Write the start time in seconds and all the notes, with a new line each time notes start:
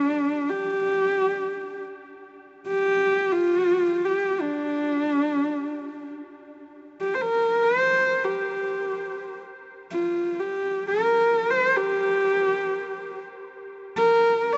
Already playing: D4
0.49 G4
2.67 G4
3.32 F4
4.04 G4
4.41 D4
7.00 G4
7.14 C5
7.21 A#4
7.63 C5
8.24 G4
9.91 F4
10.39 G4
10.87 A#4
11.50 C5
11.76 G4
13.96 A#4
14.52 D5